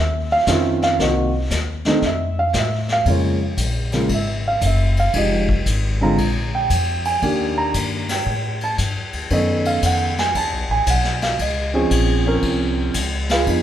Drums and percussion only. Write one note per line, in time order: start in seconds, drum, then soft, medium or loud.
0.47 kick soft
0.47 snare medium
0.47 hi-hat pedal medium
0.82 snare soft
0.99 brush sweep soft
0.99 kick soft
0.99 snare soft
1.50 kick soft
1.50 snare medium
1.50 hi-hat pedal medium
1.85 snare soft
2.02 brush sweep soft
2.02 kick soft
2.02 snare soft
2.54 kick soft
2.54 snare medium
2.54 hi-hat pedal medium
2.89 snare soft
3.06 kick soft
3.06 ride medium
3.57 kick soft
3.57 hi-hat pedal medium
3.57 ride medium
3.92 snare soft
3.92 ride soft
4.09 kick soft
4.09 ride medium
4.61 kick soft
4.61 hi-hat pedal soft
4.61 ride medium
4.97 ride soft
5.14 kick soft
5.14 ride medium
5.49 kick soft
5.66 kick soft
5.66 hi-hat pedal medium
5.66 ride medium
6.18 kick soft
6.18 ride medium
6.70 kick soft
6.70 hi-hat pedal medium
6.70 ride medium
7.05 ride soft
7.22 kick soft
7.22 ride medium
7.74 kick soft
7.74 hi-hat pedal soft
7.74 ride medium
8.09 snare medium
8.09 ride medium
8.26 kick soft
8.61 ride soft
8.78 kick soft
8.78 hi-hat pedal medium
8.78 ride medium
9.13 ride soft
9.30 kick soft
9.30 ride medium
9.65 ride soft
9.83 kick soft
9.83 hi-hat pedal medium
9.83 ride medium
10.18 snare soft
10.18 ride soft
10.35 kick soft
10.35 ride medium
10.87 kick soft
10.87 hi-hat pedal medium
10.87 ride medium
11.04 snare soft
11.22 snare soft
11.22 ride soft
11.39 kick soft
11.39 ride medium
11.91 kick soft
11.91 hi-hat pedal medium
11.91 ride medium
12.42 kick soft
12.42 ride medium
12.94 kick soft
12.94 hi-hat pedal medium
12.94 ride medium
13.29 snare soft
13.29 ride soft
13.47 kick soft
13.47 ride medium